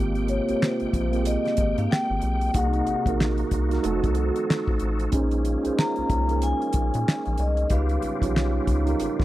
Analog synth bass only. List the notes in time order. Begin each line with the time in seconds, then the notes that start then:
Already playing: G#1
0.49 A#1
0.81 A#1
0.94 A#1
1.58 G#1
1.78 G#2
2.10 G#1
2.23 B1
2.55 C2
2.88 A#1
3.06 A#1
3.52 C2
3.85 F1
4.04 C2
4.68 A1
4.82 A1
5.13 A#1
5.66 C2
5.98 C2
6.10 C2
6.75 A#1
6.95 A#2
7.27 A#1
7.39 C2
7.71 C#2
8.04 B1
8.22 B1
8.68 C#2
9.01 G#1
9.20 G#1